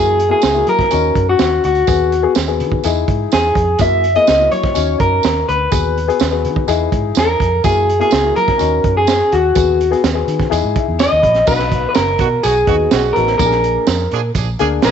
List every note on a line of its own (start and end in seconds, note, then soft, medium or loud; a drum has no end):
0.00 0.32 F#2 medium
0.00 0.17 A#3 medium
0.00 0.17 E4 medium
0.00 0.18 F#4 medium
0.00 0.30 G#4 loud
0.20 closed hi-hat medium
0.29 0.45 A#3 medium
0.29 0.46 E4 medium
0.29 0.46 F#4 medium
0.29 0.68 G#4 medium
0.42 0.62 C#2 medium
0.42 snare loud
0.42 closed hi-hat medium
0.42 tambourine medium
0.55 0.91 A#3 medium
0.55 0.91 E4 medium
0.55 0.90 F#4 medium
0.67 0.86 F#3 medium
0.67 1.29 A#4 loud
0.67 closed hi-hat medium
0.79 kick medium
0.79 snare soft
0.91 1.10 D#2 medium
0.91 1.68 C#4 medium
0.91 1.69 D#4 medium
0.91 1.68 F#4 medium
0.91 closed hi-hat medium
0.91 tambourine medium
1.15 1.34 F#2 medium
1.15 kick medium
1.15 closed hi-hat medium
1.29 1.64 F#4 medium
1.39 1.58 D#2 medium
1.39 snare loud
1.39 closed hi-hat medium
1.39 tambourine medium
1.64 1.82 D2 medium
1.64 2.32 F#4 medium
1.64 closed hi-hat medium
1.75 closed hi-hat soft
1.87 2.24 D#2 loud
1.87 2.11 B3 medium
1.87 2.11 F#4 medium
1.87 2.11 G#4 medium
1.87 kick loud
1.87 closed hi-hat medium
1.87 tambourine medium
2.12 closed hi-hat medium
2.22 2.38 B3 medium
2.22 2.39 F#4 medium
2.22 2.39 G#4 medium
2.35 2.62 D#2 medium
2.35 snare medium
2.35 closed hi-hat medium
2.35 tambourine medium
2.48 2.84 B3 medium
2.48 2.84 F#4 medium
2.48 2.84 G#4 medium
2.60 2.79 D#3 medium
2.60 closed hi-hat medium
2.72 kick medium
2.84 3.03 E2 medium
2.84 3.61 D#4 medium
2.84 3.61 E4 medium
2.84 3.61 G#4 medium
2.84 closed hi-hat medium
2.84 tambourine medium
3.08 3.26 G#2 medium
3.08 kick medium
3.08 closed hi-hat medium
3.32 3.51 E2 medium
3.32 3.81 G#4 medium
3.32 snare medium
3.32 closed hi-hat medium
3.32 tambourine medium
3.55 3.74 F2 medium
3.55 kick medium
3.55 closed hi-hat medium
3.79 4.17 F#2 medium
3.79 4.03 A#3 medium
3.79 4.03 E4 medium
3.79 4.03 F#4 medium
3.79 4.14 E5 loud
3.79 kick loud
3.79 closed hi-hat medium
3.79 tambourine medium
4.04 closed hi-hat medium
4.15 4.31 A#3 medium
4.15 4.31 E4 medium
4.15 4.32 G#4 medium
4.15 4.49 D#5 medium
4.15 closed hi-hat soft
4.27 4.47 C#2 medium
4.27 snare loud
4.27 closed hi-hat medium
4.27 tambourine medium
4.39 4.75 A#3 medium
4.39 4.76 E4 medium
4.39 4.73 F#4 medium
4.52 4.70 F#3 medium
4.52 5.00 C#5 medium
4.52 closed hi-hat medium
4.63 kick medium
4.63 snare soft
4.74 4.95 D#2 medium
4.74 5.52 C#4 medium
4.74 5.52 D#4 medium
4.74 5.52 F#4 medium
4.74 closed hi-hat medium
4.74 tambourine medium
5.00 5.19 F#2 medium
5.00 5.48 A#4 medium
5.00 kick medium
5.00 closed hi-hat medium
5.23 5.43 D#2 medium
5.23 snare loud
5.23 closed hi-hat medium
5.23 tambourine medium
5.49 5.67 D2 medium
5.49 6.88 B4 medium
5.49 closed hi-hat medium
5.70 6.09 D#2 loud
5.70 5.94 B3 medium
5.70 5.95 F#4 medium
5.70 5.95 G#4 medium
5.70 kick loud
5.70 closed hi-hat medium
5.70 tambourine medium
5.98 closed hi-hat medium
6.08 6.23 B3 medium
6.08 6.23 F#4 medium
6.08 6.24 G#4 medium
6.08 closed hi-hat soft
6.20 6.46 D#2 medium
6.20 snare loud
6.20 closed hi-hat medium
6.20 tambourine medium
6.32 6.68 B3 medium
6.32 6.68 F#4 medium
6.32 6.67 G#4 medium
6.45 6.63 D#3 medium
6.45 closed hi-hat medium
6.56 kick medium
6.68 6.86 E2 medium
6.68 7.45 D#4 medium
6.68 7.45 E4 medium
6.68 7.45 G#4 loud
6.68 closed hi-hat medium
6.68 tambourine medium
6.92 7.11 G#2 medium
6.92 kick medium
6.92 closed hi-hat medium
7.15 7.35 E2 medium
7.15 7.64 A#4 loud
7.15 snare loud
7.15 closed hi-hat medium
7.15 tambourine medium
7.40 7.59 F2 medium
7.40 kick medium
7.40 closed hi-hat medium
7.64 8.01 F#2 medium
7.64 7.87 A#3 medium
7.64 7.88 E4 medium
7.64 7.88 F#4 medium
7.64 8.00 G#4 medium
7.64 kick loud
7.64 closed hi-hat medium
7.64 tambourine medium
7.89 closed hi-hat medium
7.99 8.15 A#3 medium
7.99 8.16 E4 medium
7.99 8.16 F#4 medium
7.99 8.36 G#4 medium
7.99 closed hi-hat soft
8.11 8.31 C#2 medium
8.11 snare loud
8.11 closed hi-hat medium
8.11 tambourine medium
8.22 8.59 A#3 medium
8.22 8.60 E4 medium
8.22 8.58 F#4 medium
8.36 8.55 F#3 medium
8.36 8.97 A#4 loud
8.36 closed hi-hat medium
8.48 kick medium
8.48 snare soft
8.58 8.79 D#2 medium
8.58 9.36 C#4 medium
8.58 9.36 D#4 medium
8.58 9.37 F#4 medium
8.58 closed hi-hat medium
8.58 tambourine medium
8.84 9.21 F#2 medium
8.84 kick medium
8.84 closed hi-hat medium
8.97 9.34 G#4 medium
9.07 snare loud
9.07 closed hi-hat medium
9.07 tambourine medium
9.32 9.51 D#2 medium
9.32 10.00 F#4 medium
9.32 closed hi-hat medium
9.55 9.93 D#2 loud
9.55 9.79 B3 medium
9.55 9.79 F#4 medium
9.55 9.79 G#4 medium
9.55 kick loud
9.55 closed hi-hat medium
9.55 tambourine medium
9.81 closed hi-hat medium
9.91 10.07 B3 medium
9.91 10.07 F#4 medium
9.91 10.07 G#4 medium
9.91 closed hi-hat soft
10.04 10.22 D#2 medium
10.04 snare loud
10.04 closed hi-hat medium
10.04 tambourine medium
10.13 10.51 B3 medium
10.13 10.51 F#4 medium
10.13 10.50 G#4 medium
10.27 10.46 D#3 medium
10.27 closed hi-hat medium
10.40 kick medium
10.40 snare soft
10.50 10.61 E2 medium
10.50 11.28 D#4 medium
10.50 11.28 E4 medium
10.50 11.28 G#4 loud
10.50 closed hi-hat medium
10.50 tambourine medium
10.64 10.73 G#2 medium
10.76 10.98 E5 medium
10.76 kick medium
10.76 closed hi-hat medium
10.88 11.07 E2 medium
10.99 11.47 D#5 loud
10.99 11.22 G#5 medium
10.99 snare loud
10.99 closed hi-hat medium
10.99 tambourine medium
11.12 11.21 D#2 medium
11.22 11.42 A#1 medium
11.22 11.45 B5 medium
11.22 kick medium
11.22 closed hi-hat medium
11.34 snare soft
11.34 closed hi-hat soft
11.46 11.84 B1 loud
11.46 12.09 B3 medium
11.46 11.53 D4 medium
11.46 12.10 F#4 medium
11.46 11.88 B4 medium
11.46 kick loud
11.46 crash medium
11.46 tambourine medium
11.52 12.12 D#4 medium
11.59 snare soft
11.72 kick medium
11.72 closed hi-hat medium
11.89 11.95 B4 medium
11.95 12.15 F#1 medium
11.95 12.45 A#4 medium
11.95 snare loud
11.95 closed hi-hat medium
11.95 tambourine medium
12.19 12.38 B2 medium
12.19 12.27 D#3 medium
12.19 12.27 B3 medium
12.19 12.27 F#4 loud
12.19 kick medium
12.19 closed hi-hat medium
12.43 12.63 B1 medium
12.43 12.54 D#3 medium
12.43 12.54 B3 medium
12.43 12.54 F#4 medium
12.43 13.18 G#4 medium
12.43 closed hi-hat medium
12.43 tambourine medium
12.67 12.86 D#2 medium
12.67 12.75 D#3 medium
12.67 12.99 B3 medium
12.67 12.75 B3 medium
12.67 12.98 D#4 medium
12.67 12.75 F#4 medium
12.67 12.99 F#4 medium
12.67 kick medium
12.67 closed hi-hat medium
12.91 13.10 B1 medium
12.91 13.26 D#3 medium
12.91 13.26 B3 medium
12.91 13.26 F#4 medium
12.91 snare medium
12.91 closed hi-hat medium
12.91 tambourine medium
13.13 13.35 A1 medium
13.13 13.31 B3 medium
13.13 13.31 D#4 medium
13.13 13.32 F#4 medium
13.13 13.37 A#4 medium
13.13 closed hi-hat medium
13.27 snare soft
13.38 13.76 A#1 medium
13.38 14.01 A#3 medium
13.38 14.02 D4 medium
13.38 13.46 G4 medium
13.38 14.31 A#4 medium
13.38 kick loud
13.38 closed hi-hat medium
13.38 tambourine medium
13.46 14.05 G#4 medium
13.51 snare soft
13.64 closed hi-hat medium
13.87 14.06 F2 medium
13.87 snare loud
13.87 closed hi-hat medium
13.87 tambourine medium
14.11 14.30 A#2 medium
14.11 14.20 F3 medium
14.11 14.20 D4 medium
14.11 14.20 G#4 medium
14.11 closed hi-hat medium
14.35 14.54 A#1 medium
14.35 14.46 F3 medium
14.35 14.46 D4 medium
14.35 14.46 G#4 medium
14.35 kick medium
14.35 closed hi-hat medium
14.35 tambourine medium
14.59 14.78 D2 medium
14.59 14.67 F3 medium
14.59 14.90 A#3 medium
14.59 14.67 D4 medium
14.59 14.91 D4 medium
14.59 14.67 G#4 loud
14.59 14.91 G#4 medium
14.59 closed hi-hat medium
14.82 14.91 A#1 medium
14.82 14.91 F3 medium
14.82 14.91 D4 medium
14.82 14.91 G#4 medium
14.82 14.91 C5 medium
14.82 snare loud
14.82 closed hi-hat medium
14.82 tambourine medium